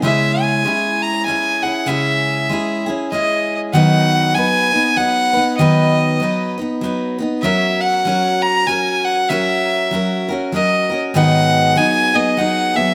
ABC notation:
X:1
M:3/4
L:1/16
Q:"Swing" 1/4=97
K:C#dor
V:1 name="Fiddle"
e2 g4 a2 g2 f2 | e6 z2 d3 z | f4 g4 f4 | d6 z6 |
e2 f4 a2 g2 f2 | e6 z2 d3 z | f4 g2 d2 f2 e2 |]
V:2 name="Steel-string acoustic guitar"
[C,G,CEG]4 [G,CEG]4 [G,CEG]2 [CEG]2 | [C,G,CEG]4 [G,CEG]2 [CEG]2 [G,CEG]4 | [D,F,B,DB]4 [F,B,DB]2 [B,DB]2 [F,B,DB]2 [B,DB]2 | [D,F,B,DB]4 [F,B,DB]2 [B,DB]2 [F,B,DB]2 [B,DB]2 |
[F,CFA]4 [F,CFA]4 [F,CFA]4 | [F,CFA]4 [F,CFA]2 [CFA]2 [F,CFA]2 [CFA]2 | [G,,D,F,B,DG]4 [F,B,DG]2 [F,B,DG]2 [F,B,DG]2 [F,B,G]2 |]